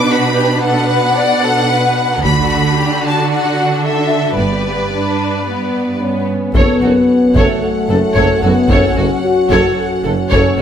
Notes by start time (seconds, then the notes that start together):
Already playing: B2 D4 B4
0.09 F#4 B5
0.36 G4
0.63 A4 F#5
0.90 B4
1.17 D5
1.44 A4
1.70 B4
2.24 D2 D3 D4 F#4 B5, taiko
2.78 G4
3.04 F#4 A5
3.32 F#5
3.84 A4 E5
4.37 G1 G2 B3 G4 B4 D5
4.93 D4
5.48 B3
6.01 B3 C#4
6.55 F#1 F#2 F#3 B3 C#4 A4 C#5 F#5, taiko
6.82 F#1 F#2 F#4 A4
7.35 F#1 F#2 A3 A4 C#5, taiko
7.62 A3
7.89 F#1 F#2 A4
8.16 F#1 F#2 A4 C#5, taiko
8.42 F#1 F#2 B3 F#4 A4
8.69 F#1 F#2 C#4 A4 C#5, taiko
8.96 F#1 F#2 F#4 A4
9.25 F#4
9.51 F#1 F#2 A4 C#5, taiko
10.04 F#1 F#2 A4
10.30 F#1 F#2 C#4 A4 C#5, taiko
10.58 F#2 F#4